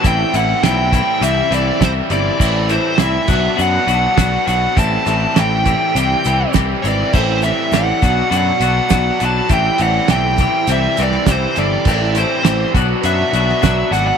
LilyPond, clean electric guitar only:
\new Staff \with { instrumentName = "Clean electric guitar" } { \clef bass \time 4/4 \key a \dorian \tempo 4 = 102 <a, e g c' e'>8 <a, e g c' e'>8 <a, e g c' e'>8 <a, e g c' e'>8 <c e g c' e'>8 <c e g c' e'>8 <c e g c' e'>8 <c e g c' e'>8 | <a, e g c' e'>8 <a, e g c' e'>8 <a, e g c' e'>8 <b, fis b d' fis'>8 <b, fis b d' fis'>8 <b, fis b d' fis'>8 <b, fis b d' fis'>8 <b, fis b d' fis'>8 | <a, e g c' g'>8 <a, e g c' g'>8 <a, e g c' g'>8 <a, e g c' g'>8 <c e g c' g'>8 <c e g c' g'>8 <c e g c' g'>8 <c e g c' g'>8 | <a, e g c' g'>8 <a, e g c' g'>8 <a, e g c' g'>8 <b, fis b d' fis'>8 <b, fis b d' fis'>8 <b, fis b d' fis'>8 <b, fis b d' fis'>8 <b, fis b d' fis'>8 |
<a, e g c' g'>8 <a, e g c' g'>8 <a, e g c' g'>8 <a, e g c' g'>8 <c e g c' g'>8 <c e g c' g'>8 <c e g c' g'>8 <c e g c' g'>8 | <a, e g c' g'>8 <a, e g c' g'>8 <a, e g c' g'>8 <b, fis b d' fis'>8 <b, fis b d' fis'>8 <b, fis b d' fis'>8 <b, fis b d' fis'>8 <b, fis b d' fis'>8 | }